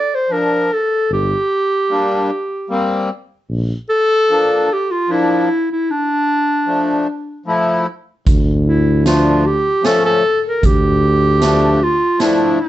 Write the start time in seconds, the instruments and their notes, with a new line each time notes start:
Already playing: clarinet D5
0.15 clarinet C5
0.29 accordion F3 D4, clarinet A#4
0.73 clarinet A4
1.10 tuba G1, clarinet G4
1.89 accordion G3 A#3 D4
2.69 accordion G3 A#3 C4
3.49 tuba A#1
3.89 clarinet A4
4.29 accordion F3 A#3 D4
4.73 clarinet G4
4.91 clarinet F4
5.08 accordion F3 A#3 D4, clarinet E4
5.71 clarinet E4
5.91 clarinet D4
6.66 accordion F3 A3 D4
7.46 accordion F3 A3 E4
8.27 tuba D2, kick, closed hi-hat
8.66 clarinet E4
9.04 accordion F3 A3 D4, clarinet F4, snare, closed hi-hat
9.46 clarinet G4
9.82 accordion F3 A3 C#4, clarinet A4, snare, closed hi-hat
10.05 clarinet A4
10.46 clarinet A#4
10.63 tuba D2, clarinet G4, kick, closed hi-hat
11.40 accordion F3 A3 D4, snare, closed hi-hat
11.83 clarinet F4
12.18 accordion F3 A3 D4, clarinet E4, snare, closed hi-hat
12.60 clarinet D4